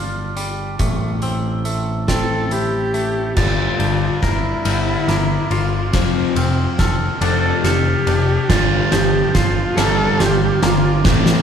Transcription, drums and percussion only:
0.37 closed hi-hat medium
0.79 kick medium
0.79 closed hi-hat medium
1.22 closed hi-hat soft
1.65 closed hi-hat soft
2.08 kick medium
2.08 snare medium
2.08 closed hi-hat medium
2.51 closed hi-hat medium
2.94 closed hi-hat medium
3.36 kick medium
3.36 snare soft
3.36 crash medium
3.80 ride medium
4.22 kick medium
4.22 snare soft
4.22 ride soft
4.65 ride medium
5.08 snare medium
5.08 ride medium
5.51 ride medium
5.93 kick medium
5.93 snare medium
5.93 ride medium
6.36 ride medium
6.79 kick medium
6.79 snare medium
6.79 ride medium
7.21 ride medium
7.64 snare medium
7.64 ride medium
8.07 ride medium
8.50 kick medium
8.50 snare medium
8.50 ride medium
8.92 snare medium
8.92 ride medium
9.35 kick medium
9.35 snare medium
9.35 ride medium
9.78 snare medium
9.78 ride medium
10.20 snare medium
10.20 ride medium
10.63 snare loud
10.63 ride medium
11.05 kick loud
11.05 snare loud
11.26 snare loud

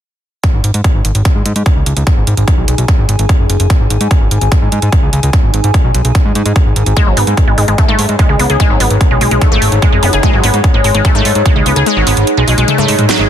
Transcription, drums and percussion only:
0.44 kick loud
0.44 closed hi-hat medium
0.64 closed hi-hat medium
0.74 closed hi-hat medium
0.84 kick loud
0.84 closed hi-hat medium
1.05 closed hi-hat medium
1.15 closed hi-hat medium
1.25 kick loud
1.25 closed hi-hat medium
1.46 closed hi-hat medium
1.56 closed hi-hat medium
1.66 kick loud
1.66 closed hi-hat medium
1.86 closed hi-hat medium
1.97 closed hi-hat medium
2.07 kick loud
2.07 closed hi-hat medium
2.27 closed hi-hat medium
2.37 closed hi-hat medium
2.48 kick loud
2.48 closed hi-hat medium
2.68 closed hi-hat loud
2.78 closed hi-hat medium
2.88 kick loud
2.88 closed hi-hat medium
3.09 closed hi-hat medium
3.19 closed hi-hat medium
3.29 kick loud
3.29 closed hi-hat medium
3.50 closed hi-hat medium
3.60 closed hi-hat medium
3.70 kick loud
3.70 closed hi-hat medium
3.90 closed hi-hat medium
4.01 closed hi-hat medium
4.11 kick loud
4.11 closed hi-hat medium
4.31 closed hi-hat medium
4.41 closed hi-hat medium
4.52 kick loud
4.52 closed hi-hat medium
4.72 closed hi-hat medium
4.82 closed hi-hat medium
4.92 kick loud
4.92 closed hi-hat medium
5.13 closed hi-hat medium
5.23 closed hi-hat medium
5.33 kick loud
5.33 closed hi-hat medium
5.54 closed hi-hat medium
5.64 closed hi-hat medium
5.74 kick loud
5.74 closed hi-hat medium
5.95 closed hi-hat medium
6.05 closed hi-hat medium
6.15 kick loud
6.15 closed hi-hat medium
6.35 closed hi-hat medium
6.46 closed hi-hat medium
6.56 kick loud
6.56 closed hi-hat medium
6.76 closed hi-hat medium
6.86 closed hi-hat medium
6.97 kick loud
6.97 closed hi-hat medium
7.17 open hi-hat loud
7.27 closed hi-hat medium
7.37 kick loud
7.37 closed hi-hat medium
7.58 open hi-hat medium
7.68 closed hi-hat medium
7.78 kick loud
7.78 closed hi-hat medium
7.99 open hi-hat loud
8.09 closed hi-hat medium
8.19 kick loud
8.19 closed hi-hat medium
8.39 open hi-hat medium
8.50 closed hi-hat medium
8.60 kick loud
8.60 closed hi-hat medium
8.80 open hi-hat loud
8.90 closed hi-hat medium
9.01 kick loud
9.01 closed hi-hat medium
9.21 open hi-hat medium
9.31 closed hi-hat medium
9.41 kick loud
9.41 closed hi-hat medium
9.62 open hi-hat loud
9.72 closed hi-hat medium
9.82 kick loud
9.82 closed hi-hat medium
10.03 open hi-hat medium
10.13 closed hi-hat medium
10.23 kick loud
10.23 closed hi-hat medium
10.44 open hi-hat loud
10.54 closed hi-hat medium
10.64 kick loud
10.64 closed hi-hat medium
10.84 open hi-hat medium
10.95 closed hi-hat medium
11.05 kick loud
11.05 closed hi-hat medium
11.25 open hi-hat loud
11.35 closed hi-hat medium
11.46 kick loud
11.46 closed hi-hat medium
11.66 open hi-hat medium
11.76 closed hi-hat medium
11.86 closed hi-hat medium
12.07 open hi-hat loud
12.17 closed hi-hat medium
12.27 closed hi-hat medium
12.48 open hi-hat medium
12.58 closed hi-hat medium
12.68 closed hi-hat medium
12.68 high tom medium
12.78 high tom medium
12.88 open hi-hat loud
12.99 closed hi-hat medium
12.99 mid tom medium
13.09 snare medium
13.09 closed hi-hat medium

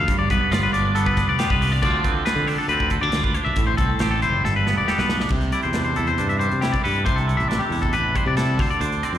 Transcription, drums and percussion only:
0.08 kick loud
0.08 closed hi-hat medium
0.30 kick medium
0.30 closed hi-hat medium
0.52 snare loud
0.52 closed hi-hat medium
0.74 closed hi-hat medium
0.96 closed hi-hat medium
1.06 kick medium
1.17 kick medium
1.17 snare soft
1.17 closed hi-hat medium
1.39 snare medium
1.39 closed hi-hat medium
1.50 kick medium
1.62 open hi-hat medium
1.83 kick loud
1.83 closed hi-hat medium
2.04 kick medium
2.04 closed hi-hat medium
2.26 snare loud
2.26 closed hi-hat medium
2.48 open hi-hat medium
2.69 closed hi-hat medium
2.80 kick medium
2.90 kick medium
2.90 closed hi-hat medium
3.12 snare medium
3.12 closed hi-hat medium
3.24 kick medium
3.34 closed hi-hat medium
3.56 kick medium
3.56 closed hi-hat medium
3.78 kick medium
3.78 closed hi-hat medium
3.99 snare loud
3.99 closed hi-hat medium
4.22 closed hi-hat soft
4.45 snare medium
4.67 snare medium
4.88 snare medium
4.99 snare medium
5.09 snare medium
5.20 snare medium
5.29 kick medium
5.29 crash medium
5.41 closed hi-hat soft
5.52 closed hi-hat medium
5.62 closed hi-hat soft
5.73 snare medium
5.73 closed hi-hat medium
5.84 closed hi-hat soft
5.96 closed hi-hat medium
6.07 closed hi-hat soft
6.18 closed hi-hat medium
6.30 closed hi-hat soft
6.41 closed hi-hat medium
6.51 closed hi-hat soft
6.62 snare medium
6.62 closed hi-hat medium
6.74 kick medium
6.74 closed hi-hat soft
6.85 open hi-hat medium
6.96 closed hi-hat soft
7.06 kick medium
7.06 closed hi-hat medium
7.18 closed hi-hat soft
7.29 closed hi-hat soft
7.40 closed hi-hat soft
7.51 snare medium
7.51 closed hi-hat medium
7.72 open hi-hat medium
7.82 kick medium
7.82 closed hi-hat soft
7.93 closed hi-hat medium
8.15 kick medium
8.15 closed hi-hat medium
8.37 snare medium
8.37 closed hi-hat medium
8.59 kick medium
8.59 open hi-hat medium
8.71 closed hi-hat soft
8.81 closed hi-hat medium
8.92 closed hi-hat soft
9.03 closed hi-hat medium
9.15 closed hi-hat soft

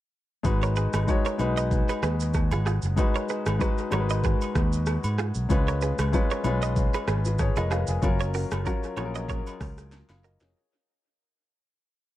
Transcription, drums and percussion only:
0.45 kick loud
0.45 high agogo medium
0.45 shaker medium
0.63 shaker soft
0.76 shaker medium
0.93 cross-stick loud
0.93 high agogo medium
0.93 shaker medium
1.08 kick loud
1.08 low woodblock medium
1.08 shaker medium
1.25 shaker soft
1.39 high agogo medium
1.39 shaker soft
1.57 shaker medium
1.71 kick medium
1.71 shaker medium
1.89 high agogo medium
1.89 shaker medium
2.03 cross-stick loud
2.03 shaker medium
2.20 shaker loud
2.34 kick loud
2.34 cross-stick medium
2.34 low woodblock medium
2.34 shaker medium
2.51 high agogo medium
2.51 shaker medium
2.66 cross-stick medium
2.66 shaker medium
2.82 shaker medium
2.98 kick loud
2.98 high agogo medium
2.98 shaker medium
3.15 shaker soft
3.29 shaker medium
3.46 cross-stick loud
3.46 high agogo medium
3.46 shaker medium
3.61 kick medium
3.61 low woodblock medium
3.61 shaker medium
3.78 shaker soft
3.92 cross-stick medium
3.92 high agogo medium
3.92 shaker soft
4.10 shaker medium
4.24 kick medium
4.24 shaker medium
4.41 high agogo medium
4.41 shaker medium
4.55 kick medium
4.55 cross-stick loud
4.55 shaker medium
4.73 shaker loud
4.86 cross-stick medium
4.86 low woodblock medium
4.86 shaker medium
5.04 high agogo medium
5.04 shaker medium
5.18 cross-stick medium
5.18 shaker medium
5.35 shaker loud
5.50 kick loud
5.50 high agogo medium
5.50 shaker medium
5.68 shaker soft
5.81 shaker medium
5.99 cross-stick loud
5.99 high agogo medium
5.99 shaker medium
6.13 kick loud
6.13 low woodblock medium
6.13 shaker medium
6.31 shaker soft
6.44 high agogo medium
6.44 shaker soft
6.62 shaker medium
6.76 kick medium
6.76 shaker medium
6.94 high agogo medium
6.94 shaker medium
7.08 cross-stick loud
7.08 shaker medium
7.25 shaker loud
7.39 kick loud
7.39 cross-stick medium
7.39 low woodblock medium
7.39 shaker medium
7.56 high agogo medium
7.56 shaker medium
7.71 cross-stick medium
7.71 shaker medium
7.87 shaker loud
8.03 kick loud
8.03 high agogo medium
8.03 shaker medium
8.21 shaker soft
8.34 open hi-hat medium
8.34 shaker medium
8.51 cross-stick loud
8.51 high agogo medium
8.51 shaker medium
8.66 kick medium
8.66 low woodblock medium
8.66 shaker medium
8.83 shaker soft
8.97 cross-stick medium
8.97 high agogo medium
8.97 shaker soft
9.15 shaker medium
9.29 kick loud
9.29 shaker medium
9.47 high agogo medium
9.47 shaker medium
9.61 kick loud
9.61 cross-stick loud
9.61 open hi-hat medium
9.61 shaker medium
9.78 cross-stick medium
9.78 shaker loud
9.92 snare medium
9.92 low woodblock medium
9.92 shaker medium
10.09 snare medium
10.09 high agogo medium
10.09 shaker medium
10.24 shaker medium
10.40 snare loud
10.40 shaker loud

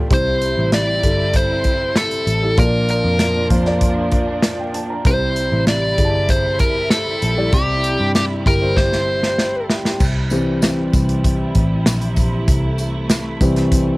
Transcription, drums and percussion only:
0.11 kick loud
0.11 closed hi-hat medium
0.42 closed hi-hat medium
0.72 snare medium
0.72 closed hi-hat medium
1.03 kick medium
1.03 closed hi-hat medium
1.33 kick medium
1.33 closed hi-hat medium
1.64 kick medium
1.64 closed hi-hat medium
1.96 snare loud
1.96 closed hi-hat medium
2.11 closed hi-hat soft
2.27 closed hi-hat medium
2.58 kick loud
2.58 closed hi-hat medium
2.89 closed hi-hat soft
3.19 snare medium
3.19 closed hi-hat medium
3.50 kick medium
3.50 closed hi-hat medium
3.65 snare soft
3.81 kick medium
3.81 closed hi-hat medium
4.12 kick medium
4.12 closed hi-hat medium
4.43 snare loud
4.43 closed hi-hat medium
4.74 closed hi-hat medium
5.05 kick loud
5.05 closed hi-hat medium
5.36 closed hi-hat medium
5.67 snare loud
5.67 closed hi-hat medium
5.98 kick medium
5.98 closed hi-hat medium
6.29 kick medium
6.29 closed hi-hat medium
6.59 kick medium
6.59 closed hi-hat medium
6.90 snare loud
6.90 closed hi-hat medium
7.22 closed hi-hat medium
7.53 kick loud
7.53 closed hi-hat medium
7.84 closed hi-hat medium
8.15 snare medium
8.15 closed hi-hat medium
8.46 kick medium
8.46 closed hi-hat medium
8.77 kick medium
8.77 snare medium
8.93 snare soft
9.23 snare medium
9.38 snare medium
9.70 snare medium
9.85 snare medium
10.00 kick loud
10.00 crash medium
10.00 tambourine soft
10.30 closed hi-hat soft
10.30 tambourine soft
10.62 snare loud
10.62 closed hi-hat medium
10.62 tambourine medium
10.93 kick medium
10.93 closed hi-hat medium
10.93 tambourine soft
11.09 closed hi-hat medium
11.24 kick medium
11.24 closed hi-hat medium
11.55 kick medium
11.55 closed hi-hat medium
11.86 snare loud
11.86 closed hi-hat medium
11.86 tambourine medium
12.02 closed hi-hat medium
12.16 kick medium
12.16 closed hi-hat medium
12.16 tambourine medium
12.48 kick loud
12.48 closed hi-hat medium
12.48 tambourine soft
12.78 closed hi-hat medium
12.78 tambourine soft
13.10 snare loud
13.10 closed hi-hat medium
13.10 tambourine medium
13.41 kick medium
13.41 closed hi-hat medium
13.41 tambourine medium
13.56 snare soft
13.56 closed hi-hat medium
13.72 kick medium
13.72 closed hi-hat medium
13.72 tambourine soft

